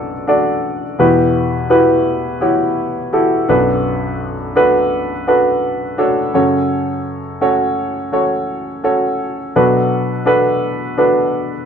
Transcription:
0.00 0.96 B1 medium
0.00 0.96 F#2 medium
0.00 0.27 D4 medium
0.00 0.28 F#4 medium
0.00 0.28 A4 medium
0.00 1.00 B4 medium
0.00 0.29 D5 medium
0.27 0.82 D4 medium
0.27 0.83 F#4 medium
0.27 0.83 A4 medium
0.27 0.83 D5 medium
0.99 3.45 E2 medium
0.99 3.45 B2 medium
0.99 1.54 E4 medium
0.99 1.54 F#4 medium
0.99 1.54 G4 medium
0.99 1.54 B4 medium
1.70 2.25 E4 medium
1.70 2.25 F#4 medium
1.70 2.25 G4 medium
1.70 2.25 B4 medium
2.41 2.96 E4 medium
2.41 2.96 F#4 medium
2.41 2.96 G4 medium
2.41 2.96 C#5 medium
3.13 3.49 E4 medium
3.13 3.48 F#4 medium
3.13 3.49 G4 medium
3.13 3.48 A4 medium
3.49 6.30 B1 medium
3.49 6.31 F#2 medium
3.49 4.35 D4 medium
3.49 4.35 F#4 medium
3.49 4.35 A4 medium
3.49 4.35 B4 medium
4.56 5.10 D4 medium
4.56 5.10 F#4 medium
4.56 5.11 A4 medium
4.56 5.11 B4 medium
5.27 5.82 D4 medium
5.27 5.82 F#4 medium
5.27 5.82 A4 medium
5.27 5.82 B4 medium
5.98 6.34 D4 medium
5.98 6.33 F#4 medium
5.98 6.33 A4 medium
5.98 6.33 C#5 medium
6.34 9.16 F#2 medium
6.34 9.16 C#3 medium
6.34 7.20 C#4 medium
6.34 7.20 F#4 medium
6.34 7.20 A4 medium
6.34 7.20 C#5 medium
7.41 7.96 C#4 medium
7.41 7.96 F#4 medium
7.41 7.96 A4 medium
7.41 7.96 C#5 medium
8.12 8.67 C#4 medium
8.12 8.67 F#4 medium
8.12 8.67 A4 medium
8.12 8.67 C#5 medium
8.84 9.38 C#4 medium
8.84 9.38 F#4 medium
8.84 9.38 A4 medium
8.84 9.38 C#5 medium
9.56 11.65 B2 medium
9.56 11.65 F#3 medium
9.56 10.10 D4 medium
9.56 10.10 F#4 medium
9.56 10.10 A4 medium
9.56 10.10 B4 medium
10.26 10.80 D4 medium
10.26 10.81 F#4 medium
10.26 10.81 A4 medium
10.26 10.81 B4 medium
10.98 11.52 D4 medium
10.98 11.52 F#4 medium
10.98 11.52 A4 medium
10.98 11.52 B4 medium

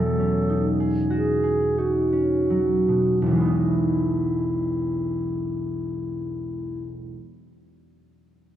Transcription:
0.00 3.27 E2 soft
0.00 2.87 B2 soft
0.00 2.49 F#3 soft
0.00 2.51 B3 soft
0.00 2.27 E4 soft
0.00 1.09 F#4 soft
0.00 0.79 G#4 soft
0.00 0.70 A4 soft
0.19 2.11 C#4 soft
0.49 1.77 D#4 soft
0.80 1.42 G#4 soft
1.10 3.29 F#4 soft
1.10 1.80 G#4 soft
1.44 5.34 G#4 soft
1.78 3.44 D#4 soft
1.78 3.21 F#4 soft
2.13 3.28 C#4 soft
2.50 3.28 F#3 soft
2.88 3.29 B2 soft
3.22 7.12 E1 soft
3.22 7.02 E4 soft
3.26 7.16 B1 soft
3.31 7.21 E3 soft
3.36 7.16 G#3 soft
3.40 7.20 B3 soft
3.45 7.25 D#4 soft

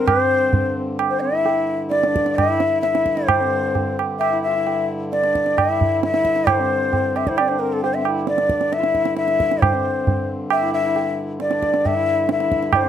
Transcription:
0.00 3.28 G2 medium
0.00 3.28 D3 medium
0.00 0.16 C4 medium
0.07 0.76 C5 loud
0.07 tabla na loud
0.07 tabla ge medium
0.17 0.83 C4 medium
0.53 tabla tin medium
0.53 tabla ge medium
0.99 tabla na medium
1.10 1.22 C5 medium
1.21 1.33 C4 soft
1.21 1.79 E5 loud
1.31 1.90 E4 medium
1.46 tabla tin medium
1.90 2.37 D5 medium
1.90 tabla te medium
2.03 2.46 D4 medium
2.03 tabla te medium
2.16 tabla ke medium
2.26 tabla te medium
2.36 2.81 E5 loud
2.36 tabla na medium
2.36 tabla ge medium
2.48 2.91 E4 medium
2.60 tabla te medium
2.81 3.28 E5 loud
2.81 tabla te medium
2.93 3.42 E4 medium
2.93 tabla te medium
3.06 tabla ke medium
3.17 tabla te medium
3.27 12.89 G2 medium
3.27 12.89 D3 medium
3.27 3.97 C5 medium
3.27 tabla na medium
3.27 tabla ge medium
3.40 4.09 C4 medium
3.75 tabla tin medium
3.75 tabla ge medium
3.99 tabla na medium
4.19 4.41 E5 loud
4.19 tabla na medium
4.31 4.47 E4 medium
4.43 4.86 E5 medium
4.48 4.56 F4 soft
4.55 5.01 E4 medium
4.67 tabla tin medium
5.12 5.60 D5 medium
5.12 tabla te medium
5.23 5.71 D4 medium
5.23 tabla te medium
5.35 tabla ke medium
5.46 tabla te medium
5.58 6.03 E5 loud
5.58 tabla na medium
5.58 tabla ge medium
5.70 6.13 E4 medium
5.81 tabla ge medium
6.03 6.51 E5 loud
6.03 tabla te medium
6.14 6.61 E4 medium
6.14 tabla te medium
6.25 tabla ke medium
6.36 tabla te medium
6.47 7.18 C5 loud
6.47 tabla na medium
6.47 tabla ge medium
6.59 7.30 C4 medium
6.93 tabla tin medium
6.93 tabla ge medium
7.16 7.29 E5 medium
7.16 tabla na medium
7.27 7.41 E4 medium
7.27 7.39 C5 medium
7.27 tabla ke medium
7.38 7.52 C4 medium
7.38 7.50 D5 medium
7.38 tabla na medium
7.48 7.61 D4 medium
7.48 7.61 C5 medium
7.60 7.93 C4 medium
7.60 7.74 A#4 medium
7.73 7.83 A4 medium
7.84 7.96 C5 medium
7.84 tabla tin medium
7.94 8.06 C4 soft
7.94 8.06 E5 medium
8.05 8.17 E4 medium
8.05 tabla na medium
8.27 8.75 D5 medium
8.27 tabla te medium
8.38 8.80 D4 medium
8.38 tabla te medium
8.49 tabla ke medium
8.61 tabla te medium
8.73 9.17 E5 loud
8.73 tabla te medium
8.79 8.86 F4 medium
8.83 9.29 E4 medium
8.83 tabla te medium
8.95 tabla ke medium
9.05 tabla te medium
9.17 9.64 E5 loud
9.17 tabla te medium
9.28 9.75 E4 medium
9.28 tabla te medium
9.40 tabla ke medium
9.51 tabla te medium
9.62 10.29 C5 medium
9.62 tabla na medium
9.62 tabla ge medium
9.73 10.40 C4 medium
10.07 tabla tin medium
10.07 tabla ge medium
10.50 10.72 E5 loud
10.50 tabla na medium
10.61 10.83 E4 medium
10.74 11.15 E5 loud
10.84 11.26 E4 medium
10.96 tabla tin medium
11.40 11.88 D5 medium
11.40 tabla te medium
11.50 11.96 D4 medium
11.50 tabla te medium
11.63 tabla ke medium
11.74 tabla te medium
11.85 12.30 E5 loud
11.85 tabla tin medium
11.85 tabla ge medium
11.95 12.38 E4 medium
12.29 12.77 E5 medium
12.29 tabla te medium
12.38 12.84 E4 medium
12.38 tabla te medium
12.52 tabla ke medium
12.63 tabla te soft
12.73 12.89 C5 medium
12.73 tabla na medium
12.73 tabla ge medium
12.83 12.89 C4 medium

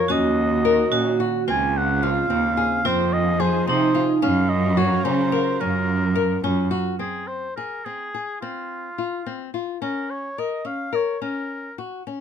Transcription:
0.00 0.12 F4 medium
0.00 0.13 C#5 medium
0.08 0.88 D#2 medium
0.08 1.46 D#3 medium
0.08 1.46 C#4 medium
0.08 0.55 C#4 medium
0.08 0.87 F#4 medium
0.08 1.46 F#4 medium
0.08 1.21 D#5 medium
0.65 0.87 A#4 medium
0.92 1.18 A#2 medium
0.92 1.15 C#4 medium
0.92 1.44 F#4 medium
1.20 1.43 F#4 medium
1.47 2.27 C#2 medium
1.47 2.84 C#3 medium
1.47 2.84 C4 medium
1.47 1.93 C4 medium
1.47 2.84 F4 medium
1.47 1.79 G#5 medium
1.77 2.05 F#5 medium
2.03 2.26 F4 medium
2.03 2.88 F5 medium
2.30 2.56 D#2 medium
2.30 2.53 C4 medium
2.57 2.80 G#4 medium
2.85 3.64 F2 medium
2.85 4.21 F3 medium
2.85 3.31 C4 medium
2.85 4.21 D#4 medium
2.85 3.64 F4 medium
2.85 4.22 G#4 medium
2.85 3.14 C5 medium
3.13 3.42 D#5 medium
3.40 3.63 G#4 medium
3.40 3.67 C5 medium
3.67 3.93 C3 medium
3.67 3.90 C4 medium
3.67 4.25 D#4 medium
3.67 4.06 C5 medium
3.95 4.18 F4 medium
4.22 5.02 F#2 loud
4.22 6.98 F#3 medium
4.22 4.68 C#4 medium
4.22 6.51 C#4 medium
4.22 6.99 F4 medium
4.22 6.98 A#4 medium
4.22 4.50 F5 medium
4.49 4.79 D#5 medium
4.77 5.00 F#4 medium
4.77 5.06 C#5 medium
5.04 5.31 C#3 medium
5.04 5.28 C#4 medium
5.04 5.62 C5 medium
5.32 5.55 A#4 medium
5.60 6.41 F#2 loud
5.60 6.07 C#4 medium
5.60 6.44 A#4 medium
6.15 6.39 A#4 medium
6.44 6.71 F#2 medium
6.44 6.67 C#4 medium
6.44 6.97 F4 medium
6.71 6.95 F#4 medium
6.99 7.47 C4 medium
6.99 7.29 G#4 medium
7.27 7.55 C5 medium
7.56 7.81 G#4 soft
7.56 7.86 A#4 medium
7.85 8.09 C4 soft
7.85 8.40 G#4 medium
8.14 8.38 G#4 soft
8.41 8.89 C4 medium
8.41 9.50 F4 medium
8.98 9.22 F4 soft
9.26 9.50 C4 medium
9.54 9.77 F4 soft
9.82 10.28 C#4 medium
9.82 10.12 A#4 medium
10.10 10.40 C#5 medium
10.38 10.61 A#4 medium
10.38 10.68 D#5 medium
10.65 10.88 C#4 medium
10.65 10.96 F5 medium
10.93 11.16 A#4 medium
10.93 11.21 C#5 medium
11.22 11.68 C#4 medium
11.22 11.74 A#4 medium
11.78 12.02 F#4 soft
12.07 12.21 C#4 medium

